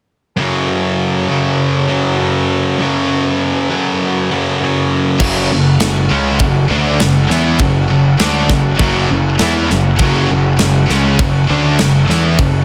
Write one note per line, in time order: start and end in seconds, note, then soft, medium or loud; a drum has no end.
0.37 1.90 F#2 medium
0.37 1.88 C#3 medium
0.37 5.16 F#3 medium
0.37 1.87 F#3 medium
0.37 2.77 C#4 medium
0.37 5.16 A4 medium
1.28 2.78 F#2 medium
1.28 2.78 C#3 medium
1.28 2.82 F#3 medium
1.88 2.17 F#2 medium
1.88 2.17 C#3 medium
1.88 2.21 F#3 medium
2.18 2.79 F#2 medium
2.18 2.78 C#3 medium
2.18 2.82 F#3 medium
2.79 4.28 F#2 medium
2.79 4.29 C#3 medium
2.79 4.30 F#3 medium
2.79 5.19 B3 medium
3.70 5.20 F#2 medium
3.70 5.19 C#3 medium
3.70 5.18 F#3 medium
4.31 4.59 F#2 medium
4.31 4.60 C#3 medium
4.31 4.59 F#3 medium
4.60 5.18 F#2 medium
4.60 5.19 C#3 medium
4.60 5.20 F#3 medium
5.18 5.48 F#1 loud
5.18 5.49 F#2 loud
5.18 5.50 C#3 loud
5.18 12.65 C#4 medium
5.18 12.65 A4 medium
5.18 12.65 F#5 medium
5.18 kick loud
5.18 crash loud
5.18 crash medium
5.22 5.50 F#3 loud
5.50 5.79 F#1 medium
5.50 5.74 F#2 medium
5.50 5.75 C#3 medium
5.80 6.09 F#1 medium
5.80 6.05 F#2 medium
5.80 6.05 C#3 medium
5.80 snare loud
5.80 crash medium
6.11 6.39 C#2 medium
6.11 6.40 C#3 medium
6.11 6.40 G#3 medium
6.11 6.40 C#4 medium
6.39 6.68 F#1 medium
6.39 6.64 F#2 medium
6.39 6.65 C#3 medium
6.39 kick loud
6.39 crash medium
6.71 6.98 D2 loud
6.71 6.99 D3 medium
6.71 7.00 A3 loud
6.71 7.00 D4 loud
7.00 7.28 F#1 medium
7.00 7.24 F#2 medium
7.00 7.24 C#3 medium
7.00 snare loud
7.00 crash medium
7.30 7.58 E2 loud
7.30 7.60 E3 medium
7.30 7.60 B3 loud
7.30 7.60 E4 loud
7.30 snare soft
7.59 7.88 F#1 medium
7.59 7.85 F#2 medium
7.59 7.84 C#3 medium
7.59 kick loud
7.59 crash medium
7.90 8.18 F#1 medium
7.90 8.14 F#2 medium
7.90 8.14 C#3 medium
8.19 8.48 D2 medium
8.19 8.49 D3 medium
8.19 8.49 A3 medium
8.19 8.50 D4 loud
8.19 snare loud
8.19 crash medium
8.49 8.78 F#1 medium
8.49 8.74 F#2 medium
8.49 8.74 C#3 medium
8.49 kick medium
8.49 snare soft
8.79 9.07 F#1 medium
8.79 9.09 F#2 medium
8.79 9.09 C#3 medium
8.79 9.09 F#3 loud
8.79 kick loud
8.79 crash medium
9.07 9.38 F#1 medium
9.07 9.32 F#2 medium
9.11 9.34 F#2 medium
9.11 9.34 C#3 medium
9.39 9.68 E2 medium
9.39 9.69 E3 loud
9.39 9.69 B3 medium
9.39 9.70 E4 loud
9.39 snare loud
9.39 crash medium
9.70 9.98 F#1 medium
9.70 9.94 F#2 medium
9.70 9.94 C#3 medium
9.70 snare soft
9.96 10.27 F#1 medium
9.96 10.26 F#2 loud
9.96 10.26 C#3 loud
9.96 10.27 F#3 loud
9.96 kick loud
9.96 crash medium
10.01 10.29 F#2 medium
10.01 10.30 C#3 loud
10.01 10.30 F#3 loud
10.27 10.57 F#1 medium
10.27 10.52 F#2 medium
10.31 10.54 F#2 medium
10.31 10.54 C#3 medium
10.59 10.87 F#1 medium
10.59 10.84 F#2 medium
10.59 10.84 C#3 medium
10.59 snare loud
10.59 crash medium
10.86 11.17 C#2 medium
10.86 11.17 C#3 loud
10.86 11.17 C#4 loud
10.86 snare soft
10.90 11.19 C#3 medium
10.90 11.19 G#3 medium
10.90 11.19 C#4 medium
11.19 11.47 F#1 medium
11.19 11.44 F#2 medium
11.19 11.44 C#3 medium
11.19 kick loud
11.19 crash medium
11.49 11.77 D2 loud
11.49 11.78 D3 medium
11.49 11.78 A3 loud
11.49 11.79 D4 loud
11.79 12.07 F#1 medium
11.79 12.03 F#2 medium
11.79 12.03 C#3 medium
11.79 snare loud
11.79 crash medium
12.08 12.37 E2 loud
12.08 12.37 E3 loud
12.08 12.38 B3 loud
12.08 12.38 E4 loud
12.08 snare soft
12.38 12.65 F#1 medium
12.38 12.62 F#2 medium
12.38 12.62 C#3 medium
12.38 kick loud
12.38 crash medium